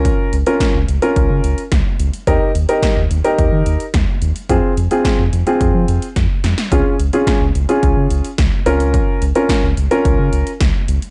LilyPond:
<<
  \new Staff \with { instrumentName = "Grand piano" } { \time 4/4 \key bes \dorian \tempo 4 = 108 <des' f' bes'>8 r16 <des' f' bes'>8 r8 <des' f' bes'>4 r4 r16 | <ees' g' bes'>8 r16 <ees' g' bes'>8 r8 <ees' g' bes'>4 r4 r16 | <c' f' aes'>8 r16 <c' f' aes'>8 r8 <c' f' aes'>4 r4 r16 | <des' f' aes'>8 r16 <des' f' aes'>8 r8 <des' f' aes'>4 r8. <des' f' bes'>8~ |
<des' f' bes'>8 r16 <des' f' bes'>8 r8 <des' f' bes'>4 r4 r16 | }
  \new Staff \with { instrumentName = "Analog synth bass" } { \clef bass \time 4/4 \key bes \dorian r8 des,16 r8 des,16 des,16 r16 des,16 des16 des,16 r16 des,16 r16 des,16 r16 | ees,16 r16 ees,16 r8 ees,16 ees,16 r16 ees,16 ees16 ees,16 r16 ees,16 r16 ees,16 r16 | f,16 r16 f,16 r8 f,16 f,16 r16 f,16 f16 f,16 r16 f,16 r16 f,16 r16 | des,16 r16 des,16 r8 des,16 des,16 r16 des,16 des16 des,16 r16 des,16 r16 des,8~ |
des,16 r16 des,16 r8 des,16 des,16 r16 des,16 des16 des,16 r16 des,16 r16 des,16 r16 | }
  \new DrumStaff \with { instrumentName = "Drums" } \drummode { \time 4/4 <hh bd>8 hh16 hh16 <hh bd sn>8 hh16 hh16 <hh bd>8 hh16 hh16 <hh bd sn>8 hh16 hh16 | <hh bd>8 hh16 hh16 <hh bd sn>8 hh16 hh16 <hh bd>8 hh16 hh16 <hh bd sn>8 hh16 hh16 | <hh bd>8 hh16 hh16 <hh bd sn>8 hh16 hh16 <hh bd>8 hh16 hh16 <hh bd sn>8 <hh sn>16 <hh sn>16 | <hh bd>8 hh16 hh16 <hh bd sn>8 hh16 hh16 <hh bd>8 hh16 hh16 <hh bd sn>8 hh16 hh16 |
<hh bd>8 hh16 hh16 <hh bd sn>8 hh16 hh16 <hh bd>8 hh16 hh16 <hh bd sn>8 hh16 hh16 | }
>>